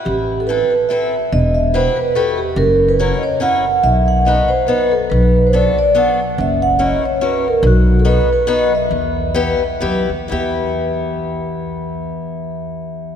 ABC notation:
X:1
M:3/4
L:1/16
Q:"Swing" 1/4=142
K:Em
V:1 name="Vibraphone"
G3 A B2 B2 e4 | ^d2 e2 c2 B2 A2 G2 | ^A3 B ^c3/2 ^d/2 c2 f4 | e2 f2 ^d2 c2 B2 A2 |
B3 c d2 d2 f4 | e2 f2 ^d2 ^c2 B2 ^A2 | F3 A B2 B2 ^d2 e2- | e8- e2 z2 |
e12- | e12 |]
V:2 name="Steel-string acoustic guitar"
z4 [CEAB]2 z2 [CEAB]2 z2 | z4 [EFGB]2 z2 [EFGB]2 z2 | z4 [^CEF^A]2 z2 [CEFA]2 z2 | z4 [B,^DFB]2 z2 [B,DFB]2 z2 |
z4 [B,DFA]2 z2 [B,DFA]2 z2 | z4 [^CEF^A]2 z2 [CEFA]2 z2 | z4 [B,^DFB]2 z2 [B,DFB]2 z2 | z4 [B,EGB]2 z2 [B,EGB]2 z2 |
[B,EGB]12- | [B,EGB]12 |]
V:3 name="Upright bass" clef=bass
A,,,8 z4 | E,,,8 z4 | F,,,8 z4 | B,,,8 z4 |
B,,,8 z4 | F,,,8 z4 | B,,,8 z4 | E,,8 F,,2 E,,2 |
E,,12- | E,,12 |]